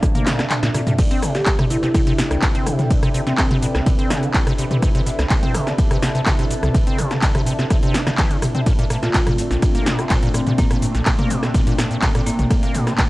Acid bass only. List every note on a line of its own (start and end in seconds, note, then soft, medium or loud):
0.02 0.07 A#2 medium
0.15 0.28 A#3 medium
0.26 0.40 A#2 medium
0.39 0.45 C3 medium
0.63 0.69 A#2 loud
0.74 0.81 A#2 medium
0.87 0.93 A#2 medium
0.98 1.02 C3 medium
1.11 1.24 C4 medium
1.22 1.36 C3 medium
1.35 1.41 D3 medium
1.59 1.65 C3 loud
1.70 1.77 C3 medium
1.83 1.89 C3 medium
1.94 2.01 C3 medium
2.07 2.13 C3 loud
2.18 2.23 B2 medium
2.31 2.37 C2 medium
2.42 2.46 C3 medium
2.55 2.68 C4 medium
2.66 2.80 C3 medium
2.79 2.85 D3 medium
3.03 3.09 C3 loud
3.14 3.21 C3 medium
3.27 3.33 C3 medium
3.38 3.45 C3 medium
3.51 3.57 C3 loud
3.62 3.67 B2 medium
3.75 3.81 C2 medium
3.86 3.90 C3 medium
3.99 4.12 C4 medium
4.10 4.24 C3 medium
4.23 4.29 D3 medium
4.47 4.53 C3 loud
4.58 4.65 C3 medium
4.71 4.77 C3 medium
4.82 4.89 C3 medium
4.95 5.01 C3 loud
5.06 5.11 B2 medium
5.19 5.25 C2 medium
5.30 5.35 C3 medium
5.43 5.56 C4 medium
5.54 5.68 C3 medium
5.67 5.73 D3 medium
5.91 5.97 C3 loud
6.02 6.09 C3 medium
6.15 6.21 C3 medium
6.26 6.33 C3 medium
6.39 6.45 C3 loud
6.51 6.55 B2 medium
6.63 6.69 C2 medium
6.74 6.79 C3 medium
6.87 7.00 C4 medium
6.99 7.12 C3 medium
7.11 7.17 D3 medium
7.35 7.41 C3 loud
7.46 7.53 C3 medium
7.59 7.65 C3 medium
7.70 7.77 C3 medium
7.83 7.96 C3 loud
7.94 8.01 E4 medium
8.07 8.11 D3 loud
8.18 8.32 E3 medium
8.31 8.37 C3 medium
8.42 8.46 C3 medium
8.55 8.61 C4 medium
8.66 8.73 A#2 medium
8.79 8.85 A#2 loud
8.90 8.97 A#2 medium
9.03 9.09 A#2 medium
9.14 9.21 A#2 medium
9.27 9.33 A#2 loud
9.38 9.43 A2 medium
9.51 9.57 A#1 medium
9.62 9.67 A#2 medium
9.75 9.88 A#3 medium
9.86 10.00 A#2 medium
9.99 10.05 C3 medium
10.10 10.17 A#2 medium
10.23 10.29 A#2 loud
10.34 10.41 A#2 medium
10.47 10.53 A#2 medium
10.58 10.65 A#2 medium
10.71 10.77 A#2 loud
10.82 10.86 A2 medium
10.95 11.01 A#1 medium
11.06 11.11 A#2 medium
11.19 11.32 A#3 medium
11.30 11.44 A#2 medium
11.43 11.49 C3 medium
11.54 11.61 A#2 medium
11.67 11.73 A#2 loud
11.78 11.85 A#2 medium
11.91 11.97 A#2 medium
12.03 12.09 A#2 medium
12.15 12.21 A#2 loud
12.27 12.31 A2 medium
12.39 12.45 A#1 medium
12.51 12.55 A#2 medium
12.63 12.76 A#3 medium
12.75 12.89 A#2 medium
12.87 12.93 C3 medium
12.99 13.05 A#2 medium